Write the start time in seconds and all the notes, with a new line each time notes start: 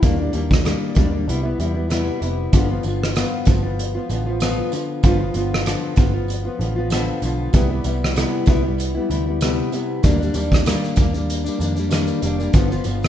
0.02 D#2 D#3 G3 A#3 D4, kick, closed hi-hat
0.18 G3 A#3 D4
0.33 D#2 D#3 G3 A#3 D4, closed hi-hat
0.51 kick, cross-stick
0.64 D#3 G3 A#3 D4, cross-stick, closed hi-hat
0.95 D#2 D#3 G3 A#3 D4, kick, closed hi-hat
1.12 A#3 D4
1.16 G3
1.27 C2 C3 G3 B3 E4, closed hi-hat
1.43 G3 B3 E4
1.58 E2 C3 G3 B3 E4, closed hi-hat
1.74 B3 E4
1.79 G3
1.89 C3 G3 B3 E4, cross-stick, closed hi-hat
2.20 F1 C3 G3 B3 E4, closed hi-hat
2.52 G1 G2 D3 F3 B3 F4, kick, closed hi-hat, tambourine
2.69 F3 B3 F4
2.83 G1 D3 F3 B3, closed hi-hat, tambourine
2.88 F4
3.03 cross-stick
3.15 G2 D3 F3 B3 F4, cross-stick, closed hi-hat, tambourine
3.45 G1 D3 F3 B3, kick, closed hi-hat, tambourine
3.50 F4
3.63 F3 B3 F4
3.79 closed hi-hat
3.95 F3 B3 F4
4.09 A1 D3 F3 B3 F4, closed hi-hat, tambourine
4.26 F3 B3 F4
4.40 G2 D3 F3 B3 F4, cross-stick, closed hi-hat, tambourine
4.72 D3 F3 B3 F4, closed hi-hat, tambourine
5.03 G1 G2 D3 F3 B3 F4, kick, closed hi-hat, tambourine
5.20 F3 B3 F4
5.34 G1 D3 F3 B3 F4, closed hi-hat, tambourine
5.54 cross-stick
5.65 G2 D3 F3 B3 F4, cross-stick, closed hi-hat, tambourine
5.96 G1 D3 F3 B3 F4, kick, closed hi-hat, tambourine
6.14 F3 B3 F4
6.28 closed hi-hat, tambourine
6.45 F3 B3 F4
6.58 A1 D3 F3 B3, closed hi-hat
6.63 F4
6.76 F3 B3 F4
6.90 G2 D3 F3 B3 F4, cross-stick, closed hi-hat, tambourine
7.22 B1 D3 F3 B3 F4, closed hi-hat, tambourine
7.53 C2 C3 G3 B3 E4, kick, closed hi-hat, tambourine
7.70 G3 B3 E4
7.84 C2 C3 G3 B3 E4, closed hi-hat, tambourine
8.04 cross-stick
8.15 C3 G3 B3 E4, cross-stick, closed hi-hat, tambourine
8.46 C2 C3 G3 B3 E4, kick, closed hi-hat, tambourine
8.64 G3 B3 E4
8.78 closed hi-hat, tambourine
8.95 G3 B3 E4
9.09 D2 C3 G3 B3 E4, closed hi-hat
9.26 G3 B3 E4
9.41 C3 G3 B3 E4, cross-stick, closed hi-hat, tambourine
9.72 C3 G3 B3 E4, closed hi-hat, tambourine
10.03 D#2 D#3 G3 A#3 D4, kick, closed hi-hat, tambourine, shaker
10.20 G3 A#3 D4, shaker
10.33 D#2 D#3 G3 A#3 D4, closed hi-hat, tambourine, shaker
10.52 kick, cross-stick, shaker
10.65 D#3 G3 A#3 D4, cross-stick, closed hi-hat, tambourine, shaker
10.84 shaker
10.96 D#2 D#3 G3 A#3, kick, closed hi-hat, tambourine, shaker
11.00 D4
11.13 G3 A#3 D4, shaker
11.30 closed hi-hat, shaker
11.44 G3 A#3 D4, shaker
11.58 F2 D#3 G3 A#3, closed hi-hat, tambourine, shaker
11.62 D4
11.75 A#3 D4, shaker
11.79 G3
11.90 D#3 G3 A#3 D4, cross-stick, closed hi-hat, tambourine, shaker
12.07 shaker
12.22 F1 D#3 G3 A#3, closed hi-hat, tambourine, shaker
12.26 D4
12.39 A#3 D4, shaker
12.43 G3
12.53 G1 G2 D3 F3 B3 F4, kick, closed hi-hat, tambourine, shaker
12.70 F3 B3 F4, shaker
12.84 G1 D3 F3 B3 F4, closed hi-hat, tambourine, shaker
13.03 cross-stick, shaker